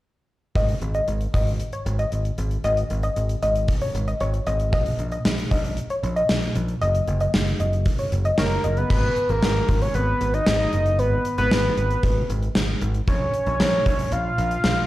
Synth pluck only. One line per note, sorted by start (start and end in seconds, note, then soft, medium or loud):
0.56 0.71 D#5 medium
0.95 1.03 D#5 medium
1.34 1.49 D#5 medium
1.73 1.81 C#5 medium
1.99 2.07 D#5 medium
2.64 2.80 D#5 loud
3.03 3.11 D#5 medium
3.43 3.58 D#5 medium
3.82 3.89 C#5 medium
4.08 4.16 D#5 medium
4.21 4.29 C#5 medium
4.47 4.55 D#5 medium
4.73 4.88 D#5 loud
5.12 5.20 D#5 medium
5.51 5.67 D#5 medium
5.90 5.98 C#5 medium
6.16 6.24 D#5 medium
6.82 6.97 D#5 loud
7.21 7.29 D#5 medium
7.60 7.76 D#5 medium
7.99 8.07 C#5 medium
8.25 8.33 D#5 medium
8.38 8.46 C#5 medium
8.64 8.72 D#5 medium